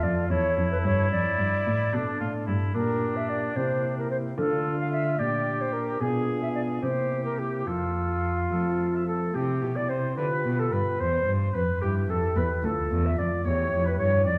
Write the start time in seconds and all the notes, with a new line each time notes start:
Already playing: F4 A4
0.03 F2 D5
0.29 E2 E4 A4 C#5
0.57 F2
0.72 B4
0.85 G2 C#5
1.11 F2 D5
1.39 G2
1.66 A2
1.94 B2 A3 D4 A4
2.20 A2 F4
2.47 G2 E4
2.74 A#2 A#3 D4 G4 A#4
3.16 E5
3.29 D5
3.56 C3 A#3 E4 G4 C5
3.98 A#4
4.11 C5
4.38 D3 A3 D4 F4 A4
4.80 F5
4.92 E5
5.19 A#2 D4 G4 D5
5.61 C5
5.73 A#4
6.00 B2 B3 D4 F4 G#4
6.42 E5
6.55 D5
6.82 C3 A#3 C4 E4 G4 C5
7.25 A#4
7.39 G4
7.66 F2 F4 A4
8.51 F3 A3 C4 F4 A4
8.95 E5
9.07 A4
9.34 C3 E4 G4
9.62 B2
9.76 D5
9.89 C3 C5
10.16 D3 F4 G4 B4
10.45 B2
10.58 A4
10.72 G2 B4
10.99 E2 C5
11.26 G2
11.54 F2 B4
11.81 G2 E4 G4
12.09 F2 A4
12.36 E2 B4
12.63 D2 A3 F4 A4
12.91 E2
13.04 E5
13.18 F2 D5
13.45 E2 A3 E4 G4 C#5
13.72 F2
13.85 B4
13.99 G2 C#5
14.25 F2 D5